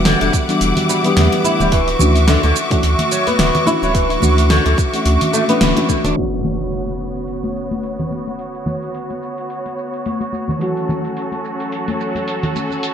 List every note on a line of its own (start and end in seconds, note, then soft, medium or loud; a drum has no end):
0.00 0.15 E1 loud
0.00 0.44 E3 medium
0.00 0.45 G3 medium
0.00 1.68 G3 medium
0.00 0.45 B3 medium
0.00 0.46 D4 medium
0.00 0.46 F#4 medium
0.00 6.13 E5 medium
0.00 1.68 F#5 medium
0.00 6.13 D6 medium
0.05 0.20 D3 medium
0.05 snare medium
0.05 open hi-hat medium
0.05 shaker soft
0.21 0.30 E1 medium
0.21 0.33 D3 medium
0.21 open hi-hat soft
0.21 muted conga soft
0.21 shaker soft
0.33 kick loud
0.33 shaker medium
0.48 1.00 E3 medium
0.48 1.01 G3 medium
0.48 1.01 B3 medium
0.48 1.01 D4 medium
0.48 1.01 F#4 medium
0.48 open hi-hat soft
0.48 shaker soft
0.61 0.73 E1 loud
0.61 open hi-hat medium
0.61 shaker soft
0.77 open hi-hat soft
0.77 muted conga soft
0.77 low conga medium
0.77 shaker soft
0.89 1.04 G3 medium
0.89 shaker medium
1.03 1.70 E3 medium
1.03 1.70 G3 medium
1.03 1.43 B3 medium
1.03 1.71 B3 medium
1.03 1.71 D4 medium
1.03 open hi-hat soft
1.03 shaker soft
1.07 1.72 G4 medium
1.16 1.29 E2 medium
1.16 snare medium
1.16 open hi-hat medium
1.16 high conga medium
1.16 shaker soft
1.32 open hi-hat soft
1.32 muted conga medium
1.32 shaker soft
1.44 1.59 E4 medium
1.44 high conga medium
1.44 shaker medium
1.60 1.95 D1 medium
1.60 1.72 G3 medium
1.60 high conga medium
1.60 low conga medium
1.60 shaker soft
1.72 1.87 E3 medium
1.72 6.13 F#4 medium
1.72 6.13 C#6 medium
1.72 kick loud
1.72 open hi-hat medium
1.72 shaker soft
1.88 open hi-hat soft
1.88 shaker soft
1.99 2.37 D2 loud
1.99 2.16 E3 medium
1.99 2.16 A3 medium
1.99 2.17 C#4 medium
1.99 2.17 D4 medium
1.99 2.17 F#4 medium
1.99 high conga medium
1.99 low conga medium
1.99 shaker medium
2.16 open hi-hat soft
2.16 shaker soft
2.28 2.42 D3 loud
2.28 snare medium
2.28 open hi-hat medium
2.28 shaker soft
2.43 2.53 D2 medium
2.43 2.55 D3 medium
2.43 open hi-hat soft
2.43 muted conga soft
2.43 shaker soft
2.56 shaker medium
2.70 2.79 E3 medium
2.70 2.79 A3 medium
2.70 2.79 C#4 medium
2.70 2.80 D4 medium
2.70 2.80 F#4 loud
2.70 kick loud
2.70 open hi-hat soft
2.70 shaker soft
2.83 2.95 D2 loud
2.83 open hi-hat medium
2.83 shaker soft
2.99 open hi-hat soft
2.99 high conga medium
2.99 low conga medium
2.99 shaker soft
3.11 3.26 F#3 medium
3.11 shaker medium
3.27 3.66 B3 medium
3.27 open hi-hat soft
3.27 high conga medium
3.27 shaker soft
3.39 3.51 D1 loud
3.39 snare medium
3.39 open hi-hat medium
3.39 shaker soft
3.55 open hi-hat soft
3.55 low conga medium
3.55 shaker soft
3.66 4.19 E3 medium
3.66 4.19 A3 medium
3.66 4.19 C#4 medium
3.66 4.20 D4 medium
3.66 3.81 E4 loud
3.66 4.20 F#4 medium
3.66 high conga medium
3.66 shaker medium
3.82 4.17 D1 loud
3.82 3.94 F#3 medium
3.82 muted conga soft
3.82 shaker soft
3.95 4.09 E3 medium
3.95 kick loud
3.95 open hi-hat medium
3.95 shaker soft
4.10 open hi-hat soft
4.10 shaker soft
4.20 4.60 D2 loud
4.20 4.89 E3 medium
4.20 4.89 A3 medium
4.20 4.90 C#4 medium
4.20 4.90 D4 medium
4.20 high conga medium
4.20 low conga medium
4.20 shaker medium
4.24 4.91 F#4 medium
4.38 open hi-hat soft
4.38 shaker soft
4.50 4.64 D3 loud
4.50 snare medium
4.50 open hi-hat medium
4.50 shaker soft
4.66 4.75 D2 medium
4.66 4.77 D3 medium
4.66 open hi-hat soft
4.66 muted conga medium
4.66 shaker soft
4.78 kick loud
4.78 shaker medium
4.93 5.45 E3 medium
4.93 5.45 A3 medium
4.93 5.45 C#4 medium
4.93 5.46 D4 medium
4.93 5.46 F#4 loud
4.93 open hi-hat soft
4.93 shaker soft
5.06 5.17 D2 loud
5.06 open hi-hat medium
5.06 shaker soft
5.21 open hi-hat soft
5.21 muted conga soft
5.21 low conga medium
5.21 shaker soft
5.33 5.42 A3 loud
5.33 shaker medium
5.48 5.73 E3 medium
5.48 5.73 A3 medium
5.48 5.61 B3 medium
5.48 5.73 C#4 medium
5.48 5.73 D4 medium
5.48 5.74 E4 medium
5.48 open hi-hat soft
5.48 shaker soft
5.61 5.73 D1 loud
5.61 snare medium
5.61 open hi-hat medium
5.61 high conga medium
5.61 shaker soft
5.76 6.15 E3 medium
5.76 6.14 A3 medium
5.76 6.15 C#4 medium
5.76 6.16 D4 medium
5.76 6.16 F#4 medium
5.76 open hi-hat soft
5.76 muted conga medium
5.76 high conga medium
5.76 shaker soft
5.89 5.98 D3 medium
5.89 kick medium
5.89 high conga medium
5.89 shaker medium
6.04 6.14 D1 loud
6.04 6.15 D4 loud
6.04 open hi-hat soft
6.04 high conga medium
6.04 low conga medium
6.04 shaker soft
6.14 10.57 D3 medium
6.14 10.58 A3 medium
6.14 10.57 B3 medium
6.14 10.58 B3 medium
6.14 10.59 C#4 medium
6.14 12.94 F#4 medium
6.14 10.57 C#5 medium
6.14 open hi-hat medium
6.14 impact medium
6.19 10.59 F#4 medium
6.32 open hi-hat soft
6.44 high conga medium
6.44 low conga medium
6.44 shaker medium
6.60 open hi-hat soft
6.60 shaker soft
6.72 open hi-hat medium
6.72 shaker soft
6.88 open hi-hat soft
6.88 muted conga soft
6.88 shaker soft
7.00 shaker medium
7.16 open hi-hat soft
7.16 shaker soft
7.28 open hi-hat medium
7.28 shaker soft
7.43 open hi-hat soft
7.43 high conga medium
7.43 shaker soft
7.56 shaker medium
7.71 open hi-hat soft
7.71 high conga medium
7.71 shaker soft
7.83 open hi-hat medium
7.83 shaker soft
7.99 open hi-hat soft
7.99 low conga medium
7.99 shaker soft
8.11 high conga medium
8.11 shaker medium
8.27 muted conga soft
8.27 shaker soft
8.39 open hi-hat medium
8.39 shaker soft
8.55 open hi-hat soft
8.55 shaker soft
8.66 high conga medium
8.66 low conga medium
8.66 shaker medium
8.83 open hi-hat soft
8.83 shaker soft
8.94 open hi-hat medium
8.94 shaker soft
9.10 open hi-hat soft
9.10 muted conga soft
9.10 shaker soft
9.23 shaker medium
9.38 open hi-hat soft
9.38 shaker soft
9.50 open hi-hat medium
9.50 shaker soft
9.66 open hi-hat soft
9.66 muted conga soft
9.66 shaker soft
9.78 shaker medium
9.94 open hi-hat soft
9.94 shaker soft
10.06 open hi-hat medium
10.06 high conga medium
10.06 shaker soft
10.21 open hi-hat soft
10.21 muted conga medium
10.21 shaker soft
10.33 high conga medium
10.33 shaker medium
10.48 high conga medium
10.48 low conga medium
10.48 shaker soft
10.59 12.94 E3 medium
10.59 12.94 F#3 medium
10.59 12.94 A3 medium
10.59 12.94 C#4 medium
10.59 12.94 F#4 medium
10.59 12.94 A4 medium
10.59 open hi-hat medium
10.59 shaker soft
10.77 open hi-hat soft
10.77 shaker soft
10.89 high conga medium
10.89 low conga medium
10.89 shaker medium
11.05 open hi-hat soft
11.05 shaker soft
11.17 open hi-hat medium
11.17 shaker soft
11.32 open hi-hat soft
11.32 muted conga soft
11.32 shaker soft
11.45 shaker medium
11.60 open hi-hat soft
11.60 shaker soft
11.72 open hi-hat medium
11.72 shaker soft
11.88 open hi-hat soft
11.88 high conga medium
11.88 shaker soft
12.01 shaker medium
12.15 open hi-hat soft
12.15 high conga medium
12.15 shaker soft
12.28 open hi-hat medium
12.28 shaker soft
12.43 open hi-hat soft
12.43 low conga medium
12.43 shaker soft
12.55 high conga medium
12.55 shaker medium
12.71 muted conga soft
12.71 shaker soft
12.83 open hi-hat medium
12.83 shaker soft